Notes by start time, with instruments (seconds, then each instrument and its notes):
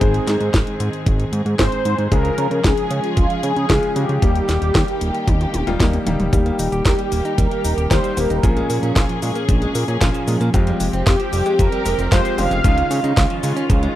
Already playing: string section D#3 G#3 C4 G#4
0.01 analog synth bass G#1, grand piano G#2 C4 D#4 G#4 C5, analog polysynth G#4, kick, closed hi-hat
0.14 closed hi-hat
0.27 analog synth bass G#2, snare, closed hi-hat
0.41 analog synth bass G#2, closed hi-hat
0.54 analog synth bass G#1, kick, snare, closed hi-hat
0.67 closed hi-hat
0.80 analog synth bass G#2, closed hi-hat
0.93 closed hi-hat
1.06 analog synth bass G#1, kick, closed hi-hat
1.20 closed hi-hat
1.33 analog synth bass G#2, closed hi-hat
1.46 analog synth bass G#2, closed hi-hat
1.59 analog synth bass G#1, grand piano G#2 C4 D#4 G#4 C5, analog polysynth C5, kick, snare, closed hi-hat
1.72 closed hi-hat
1.85 analog synth bass G#2, closed hi-hat
1.99 analog synth bass G#2, closed hi-hat
2.12 analog synth bass C#2, grand piano C#3 G#3 C#4 F4 G#4, string section F3 G#3 C#4 G#4, analog polysynth A#4, kick, closed hi-hat
2.25 closed hi-hat
2.38 analog synth bass C#3, closed hi-hat
2.51 analog synth bass C#3, closed hi-hat
2.64 analog synth bass C#2, analog polysynth G#4, kick, snare, closed hi-hat
2.77 closed hi-hat
2.91 analog synth bass C#3, closed hi-hat
3.04 analog polysynth F4, closed hi-hat
3.17 analog synth bass C#2, kick, closed hi-hat
3.30 closed hi-hat
3.43 analog synth bass C#3, analog polysynth G#4, closed hi-hat
3.57 analog synth bass C#3, closed hi-hat
3.70 analog synth bass C#2, grand piano C#3 G#3 C#4 F4 G#4, kick, snare, closed hi-hat
3.83 closed hi-hat
3.96 analog synth bass C#3, grand piano G#3 C#4 F4 G#4, analog polysynth G4, closed hi-hat
4.09 analog synth bass C#3, closed hi-hat
4.22 analog synth bass D#2, string section D#3 G3 A#3 G4, grand piano G3 A#3 D#4 G4, kick, closed hi-hat
4.35 closed hi-hat
4.49 analog synth bass D#1, snare, closed hi-hat
4.62 analog synth bass D#1, closed hi-hat
4.75 analog synth bass D#2, kick, snare, closed hi-hat
4.88 closed hi-hat
5.01 analog synth bass D#1, closed hi-hat
5.15 closed hi-hat
5.28 analog synth bass D#2, kick, closed hi-hat, high tom
5.41 closed hi-hat, high tom
5.54 analog synth bass D#1, closed hi-hat, high tom
5.67 analog synth bass D#1, grand piano G3 A#3 D#4 F4, closed hi-hat, mid tom
5.80 analog synth bass D#2, grand piano G3 A#3 D#4 G4, kick, snare, closed hi-hat, mid tom
5.93 closed hi-hat, mid tom
6.06 analog synth bass D#1, grand piano G3 A#3 D#4 G4, closed hi-hat, mid tom
6.20 analog synth bass D#1, closed hi-hat, mid tom
6.33 analog synth bass D#2, string section D#3 G3 A#3 G4, clean electric guitar G3, grand piano G3 A#3 D#4 G4, kick, closed hi-hat, cabasa
6.46 clean electric guitar A#3, closed hi-hat
6.59 analog synth bass D#1, clean electric guitar D#4, open hi-hat, cabasa
6.72 analog synth bass D#1, clean electric guitar G4, closed hi-hat, cabasa
6.85 analog synth bass D#2, analog polysynth G4, clean electric guitar A#4, kick, snare, closed hi-hat, cabasa
6.99 clean electric guitar G3, closed hi-hat
7.12 analog synth bass D#1, clean electric guitar A#3, open hi-hat, cabasa
7.25 clean electric guitar D#4, closed hi-hat, cabasa
7.38 analog synth bass D#2, clean electric guitar G3, analog polysynth A#4, kick, closed hi-hat, cabasa
7.51 clean electric guitar A#3, closed hi-hat
7.64 analog synth bass D#1, clean electric guitar D#4, open hi-hat, cabasa
7.78 analog synth bass D#1, clean electric guitar G4, closed hi-hat, cabasa
7.91 analog synth bass D#2, grand piano G3 A#3 D#4 G4, clean electric guitar A#4, analog polysynth C5, kick, snare, closed hi-hat, cabasa
8.04 clean electric guitar G3, closed hi-hat, cabasa
8.17 analog synth bass D#1, grand piano G3 A#3 D#4 G4, clean electric guitar A#3, analog polysynth A#4, open hi-hat, cabasa
8.30 analog synth bass D#1, clean electric guitar D#4, closed hi-hat, cabasa
8.43 analog synth bass A#1, grand piano A#2 A#3 C#4 F4 G#4, string section F3 C#4 G#4, clean electric guitar F3, kick, closed hi-hat, cabasa
8.57 clean electric guitar G#3, closed hi-hat
8.70 analog synth bass A#2, clean electric guitar A#3, open hi-hat, cabasa
8.83 analog synth bass A#2, clean electric guitar C#4, closed hi-hat, cabasa
8.96 analog synth bass A#1, clean electric guitar F4, kick, snare, closed hi-hat, cabasa
9.09 clean electric guitar F3, closed hi-hat
9.22 analog synth bass A#2, clean electric guitar G#3, open hi-hat, cabasa
9.35 clean electric guitar A#3, closed hi-hat, cabasa
9.49 analog synth bass A#1, clean electric guitar F3, kick, closed hi-hat, cabasa
9.62 clean electric guitar G#3, closed hi-hat
9.75 analog synth bass A#2, clean electric guitar A#3, open hi-hat, cabasa
9.88 analog synth bass A#2, clean electric guitar C#4, closed hi-hat, cabasa
10.01 analog synth bass A#1, grand piano A#2 A#3 C#4 F4 G#4, clean electric guitar F4, kick, snare, closed hi-hat, cabasa
10.15 clean electric guitar F3, closed hi-hat, cabasa
10.28 analog synth bass A#2, clean electric guitar G#3, open hi-hat, cabasa
10.41 analog synth bass A#2, clean electric guitar A#3, closed hi-hat, cabasa
10.54 analog synth bass F2, clean electric guitar F3, grand piano G#3 C4 F4 G4, string section C4 G4, kick, closed hi-hat, cabasa
10.67 clean electric guitar G3, closed hi-hat
10.80 analog synth bass F1, clean electric guitar G#3, open hi-hat, cabasa
10.93 analog synth bass F1, clean electric guitar C4, closed hi-hat, cabasa
11.06 analog synth bass F2, clean electric guitar F4, analog polysynth G4, kick, snare, closed hi-hat, cabasa
11.20 clean electric guitar F3, closed hi-hat
11.33 analog synth bass F1, clean electric guitar G3, open hi-hat, cabasa
11.46 clean electric guitar G#3, closed hi-hat, cabasa
11.59 analog synth bass F2, clean electric guitar F3, analog polysynth A#4, kick, closed hi-hat, cabasa
11.72 clean electric guitar G3, closed hi-hat
11.85 analog synth bass F1, clean electric guitar G#3, open hi-hat, cabasa
11.99 analog synth bass F1, clean electric guitar C4, closed hi-hat, cabasa
12.12 analog synth bass F2, grand piano G#3 C4 F4 G4, clean electric guitar F4, analog polysynth C5, kick, snare, closed hi-hat, cabasa
12.25 clean electric guitar F3, closed hi-hat, cabasa
12.38 analog synth bass F1, grand piano C#3 G#3 C4 F4 G4, clean electric guitar G3, analog polysynth F5, open hi-hat, cabasa
12.51 analog synth bass F1, clean electric guitar G#3, closed hi-hat, cabasa
12.64 analog synth bass C#2, grand piano C#3 G#3 C#4 D#4 F4, string section D#3 C#4 F4, clean electric guitar F3, kick, closed hi-hat, cabasa
12.78 clean electric guitar G#3, closed hi-hat
12.91 analog synth bass C#3, clean electric guitar C#4, open hi-hat, cabasa
13.04 analog synth bass C#3, clean electric guitar D#4, closed hi-hat, cabasa
13.17 analog synth bass C#2, clean electric guitar F4, kick, snare, closed hi-hat, cabasa
13.30 clean electric guitar F3, closed hi-hat
13.43 analog synth bass C#3, clean electric guitar G#3, open hi-hat, cabasa
13.56 clean electric guitar C#4, closed hi-hat, cabasa
13.70 analog synth bass C#2, clean electric guitar F3, kick, closed hi-hat, cabasa
13.83 clean electric guitar G#3, closed hi-hat